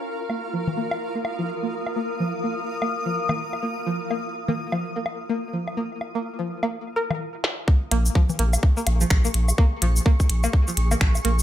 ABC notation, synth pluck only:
X:1
M:4/4
L:1/16
Q:"Swing 16ths" 1/4=126
K:Bbm
V:1 name="Synth pluck"
z2 B, z F, z B, z2 B, z F, z B, z2 | B, z F, z B, z2 B, z F, z B, z2 B, z | F, z B, z2 B, z F, z B, z2 B, z F, z | B, z2 B, z F, z B, z2 B z4 z |
z2 B, z F, z B, z2 B, z F, z B, z2 | B, z F, z B, z2 B, z F, z B, z2 B, z |]